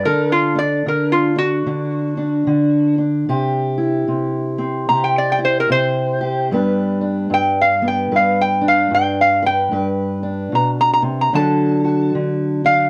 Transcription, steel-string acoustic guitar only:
0.00 0.54 D4 medium
0.06 0.85 D3 medium
0.06 3.24 A4 medium
0.55 1.34 D4 medium
0.86 1.65 D3 medium
1.36 1.65 D4 medium
1.66 2.45 D3 medium
1.66 2.16 D4 medium
2.17 2.97 D4 medium
2.47 3.24 D3 medium
2.98 3.25 D4 medium
3.29 4.07 C3 medium
3.29 4.90 G4 medium
3.78 5.38 E4 medium
4.08 4.88 C3 medium
4.58 6.47 C4 medium
4.90 5.69 C3 medium
4.90 6.20 G4 medium
5.39 6.46 E4 medium
5.70 6.50 C3 medium
6.21 6.54 G4 medium
6.51 7.29 G2 medium
6.51 9.69 G3 medium
6.51 7.81 B3 medium
6.51 7.01 D4 medium
6.51 8.10 B4 medium
7.01 8.61 D4 medium
7.30 8.10 G2 medium
7.82 9.69 B3 medium
8.11 8.90 G2 medium
8.11 9.41 B4 medium
8.62 10.22 D4 medium
8.91 9.71 G2 medium
9.43 9.69 B4 medium
9.72 10.52 G2 medium
9.72 11.30 B4 medium
10.23 11.33 D4 medium
10.52 11.02 B2 medium
11.02 11.32 C3 medium
11.33 12.13 D3 medium
11.33 12.90 F#3 medium
11.33 12.63 D4 medium
11.33 11.83 F#4 medium
11.33 12.90 A4 medium
11.84 12.90 F#4 medium
12.15 12.90 D3 medium
12.65 12.90 D4 medium

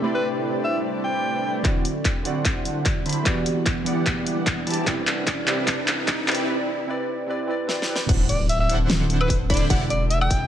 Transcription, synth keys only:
0.02 1.62 A3 medium
0.02 1.62 C4 medium
0.02 1.62 E4 medium
0.02 1.62 G4 medium
0.02 1.64 D5 medium
0.02 1.63 B5 medium
1.63 2.22 D3 medium
1.63 2.22 C4 medium
1.63 2.23 E4 medium
1.63 2.23 F#4 medium
1.63 2.24 D5 medium
2.23 3.23 D3 medium
2.23 3.23 C4 medium
2.23 3.24 E4 medium
2.23 3.24 F#4 medium
2.23 3.25 D5 medium
3.24 3.83 E3 medium
3.24 3.83 B3 medium
3.24 3.84 F#4 medium
3.24 3.85 G4 medium
3.28 3.85 D5 medium
3.84 4.84 E3 medium
3.84 4.84 B3 medium
3.84 4.85 G4 medium
3.84 4.85 F#5 medium
3.88 4.86 D5 medium
4.85 5.44 C3 medium
4.85 5.45 C4 medium
4.85 5.45 E4 medium
4.85 5.46 B4 medium
4.89 5.46 D5 medium
5.45 5.64 C3 medium
5.45 5.65 C4 medium
5.45 5.66 E4 medium
5.45 5.66 B4 medium
5.49 5.67 D5 medium
5.65 6.25 C3 medium
5.65 6.25 C4 medium
5.65 6.26 E4 medium
5.65 6.26 B4 medium
5.65 6.27 D5 medium
6.26 6.45 C3 medium
6.26 6.46 C4 medium
6.26 6.47 E4 medium
6.26 6.47 B4 medium
6.30 6.48 D5 medium
6.46 6.85 C3 medium
6.46 6.86 C4 medium
6.46 6.87 E4 medium
6.46 6.87 B4 medium
6.50 6.88 D5 loud
6.86 7.25 C3 medium
6.86 7.26 C4 medium
6.86 7.27 E4 medium
6.86 7.28 B4 medium
6.90 7.28 D5 loud
7.26 7.45 C3 medium
7.26 7.46 C4 medium
7.26 7.47 E4 medium
7.26 7.48 B4 medium
7.30 7.48 D5 loud
7.46 7.66 C3 medium
7.46 7.67 C4 medium
7.46 7.67 E4 medium
7.46 7.68 B4 medium
7.51 7.68 D5 loud
7.67 7.86 C3 medium
7.67 7.87 C4 medium
7.67 7.87 E4 medium
7.67 7.88 B4 medium
7.67 7.88 D5 loud
7.87 8.07 C3 medium
7.87 8.07 C4 medium
7.87 8.08 E4 medium
7.87 8.08 B4 medium
7.91 8.09 D5 loud

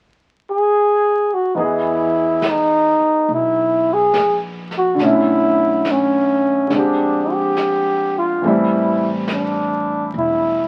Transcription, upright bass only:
1.57 2.96 E2 medium
3.00 muted upright bass stroke soft
3.29 4.10 B1 medium
4.14 4.96 A#1 medium
4.98 6.66 B1 medium
6.71 8.38 A#1 medium
8.44 10.10 A1 medium
10.14 10.68 E1 medium

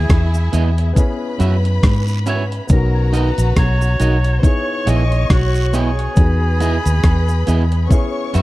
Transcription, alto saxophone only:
0.00 1.41 G#4 loud
2.29 2.45 C#5 medium
2.72 3.17 A#4 medium
3.15 3.58 B4 medium
3.58 4.34 C#5 loud
4.39 4.46 C5 medium
4.45 4.90 C#5 loud
4.89 5.33 D#5 loud
5.32 5.74 F#4 medium
5.75 8.31 G#4 loud

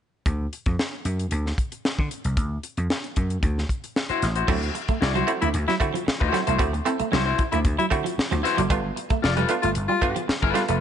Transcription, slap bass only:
0.26 0.46 D2 loud
0.66 0.75 F2 medium
1.05 1.25 F#2 medium
1.32 1.51 D2 medium
1.99 2.08 D3 medium
2.25 2.37 C2 medium
2.37 2.57 D2 loud
2.78 2.87 F2 medium
3.17 3.36 F#2 medium
3.43 3.62 D2 loud
4.10 muted slap bass stroke soft
4.23 4.42 A1 medium
4.49 4.68 D2 loud
4.89 muted slap bass stroke soft
5.02 5.21 C2 medium
5.42 5.51 D2 medium
5.54 5.64 D2 loud
5.81 5.91 D3 medium
6.08 muted slap bass stroke medium
6.21 6.30 D2 medium
6.48 6.60 C2 medium
6.60 6.79 D2 loud
7.00 muted slap bass stroke medium
7.13 7.32 C2 medium
7.53 7.62 D2 medium
7.65 7.75 D2 loud
7.92 8.02 D3 medium
8.18 muted slap bass stroke soft
8.32 8.41 D2 medium
8.58 8.67 F#1 medium
8.70 8.90 G1 loud
9.11 muted slap bass stroke soft
9.24 9.43 F1 medium
9.64 9.73 G1 medium
9.77 9.87 G1 medium
10.02 10.12 G2 medium
10.29 muted slap bass stroke soft
10.43 10.52 G1 medium
10.69 10.78 F1 medium

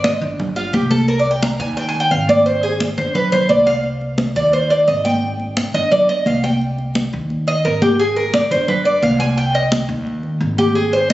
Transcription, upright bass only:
0.00 0.16 G#1 medium
0.22 0.70 G1 loud
0.73 1.54 C2 medium
1.60 2.08 D#2 loud
2.11 2.92 G#1 medium
2.98 3.46 G1 loud
3.50 4.31 C2 medium
4.36 4.84 D#2 medium
4.88 5.69 G#1 medium
5.74 6.23 G1 loud
6.26 7.07 C2 medium
7.13 7.61 D#2 medium
7.65 8.45 G#1 medium
8.51 8.99 G1 loud
9.03 9.83 C2 loud
9.89 10.37 D#2 loud
10.41 11.13 G#1 loud

